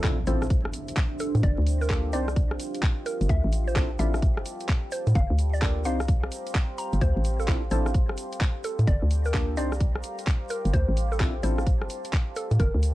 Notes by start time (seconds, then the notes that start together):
Already playing: A1 D4 A4 C5, impact
0.00 C4 D4 E4 F4 G4 A4 E5, kick, cross-stick, clap, closed hi-hat
0.27 A1 C4 D4 E4 F4 A4 C5, open hi-hat, shaker
0.42 cross-stick, shaker
0.50 kick, closed hi-hat, shaker
0.65 G1, cross-stick
0.73 open hi-hat, shaker
0.88 closed hi-hat, shaker
0.96 kick, clap, closed hi-hat, shaker
1.19 A4, open hi-hat, shaker
1.35 A2, closed hi-hat, shaker
1.43 G1 D5, kick, closed hi-hat
1.58 D2
1.67 open hi-hat, shaker
1.81 A#4, shaker
1.90 A#3 D4 F4 G4 A4, kick, cross-stick, clap, closed hi-hat, shaker
2.13 C2 C4 D4 D#4 F4 G4 C5 D5, open hi-hat, shaker
2.28 cross-stick, shaker
2.36 kick, closed hi-hat, shaker
2.51 A#1, cross-stick
2.60 open hi-hat, shaker
2.75 closed hi-hat, shaker
2.83 kick, clap, closed hi-hat, shaker
3.06 A#4, open hi-hat, shaker
3.21 G1, closed hi-hat, shaker
3.29 D2 G4 E5, kick, closed hi-hat, shaker
3.44 A1
3.53 open hi-hat, shaker
3.67 C5, shaker
3.76 C4 D4 E4 F4 A4, kick, cross-stick, clap, closed hi-hat, shaker
3.99 A1 C4 D4 E4 F4 A4 E5, open hi-hat, shaker
4.14 cross-stick, shaker
4.22 kick, closed hi-hat, shaker
4.37 G1, cross-stick
4.46 open hi-hat, shaker
4.60 closed hi-hat, shaker
4.68 kick, clap, closed hi-hat, shaker
4.92 C5, open hi-hat, shaker
5.07 A2, closed hi-hat, shaker
5.15 G1 G4 F5, kick, closed hi-hat, shaker
5.25 C5
5.30 D2
5.39 open hi-hat, shaker
5.49 F5 A#5
5.53 D5, shaker
5.62 A#3 D4 F4 G4 A4, kick, cross-stick, clap, closed hi-hat, shaker
5.84 C2 C4 D4 D#4 G4 C5 F5, open hi-hat, shaker
6.00 cross-stick, shaker
6.08 kick, closed hi-hat, shaker
6.23 A#1, cross-stick
6.32 open hi-hat, shaker
6.47 closed hi-hat, shaker
6.55 kick, clap, closed hi-hat, shaker
6.78 A#5, open hi-hat, shaker
6.93 G1, closed hi-hat, shaker
7.01 D2 C5, kick, closed hi-hat, shaker
7.16 A1
7.25 open hi-hat, shaker
7.40 A4, shaker
7.48 C4 D4 E4 F4 A4, kick, cross-stick, clap, closed hi-hat, shaker
7.71 A1 C4 D4 E4 F4 A4 C5, open hi-hat, shaker
7.86 cross-stick, shaker
7.94 kick, closed hi-hat, shaker
8.09 G1, cross-stick
8.18 open hi-hat, shaker
8.32 closed hi-hat, shaker
8.41 kick, clap, closed hi-hat, shaker
8.64 A4, open hi-hat, shaker
8.79 A2, closed hi-hat, shaker
8.87 G1 G4 D5, kick, closed hi-hat, shaker
9.02 D2
9.11 C5, open hi-hat, shaker
9.21 F5 A#5, shaker
9.26 A#4
9.34 A#3 D4 F4 G4 A4, kick, cross-stick, clap, closed hi-hat, shaker
9.57 C2 C4 D4 D#4 G4 C5 D5, open hi-hat, shaker
9.72 cross-stick, shaker
9.80 kick, closed hi-hat, shaker
9.95 A#1, cross-stick
10.03 open hi-hat, shaker
10.18 closed hi-hat, shaker
10.27 kick, clap, closed hi-hat, shaker
10.49 A#4, open hi-hat, shaker
10.65 G1, closed hi-hat, shaker
10.73 D2 C5, kick, closed hi-hat, shaker
10.88 A1
10.97 open hi-hat, shaker
11.12 A4, shaker
11.20 C4 D4 E4 F4 A4, kick, cross-stick, clap, closed hi-hat, shaker
11.43 A1 C4 D4 E4 F4 A4 C5, open hi-hat, shaker
11.58 cross-stick, shaker
11.67 kick, closed hi-hat, shaker
11.81 G1, cross-stick
11.90 open hi-hat, shaker
12.05 closed hi-hat, shaker
12.12 kick, clap, closed hi-hat, shaker
12.36 A4, open hi-hat, shaker
12.51 A2, closed hi-hat, shaker
12.60 G1 G4 A#4, kick, closed hi-hat, shaker
12.74 D2
12.83 open hi-hat, shaker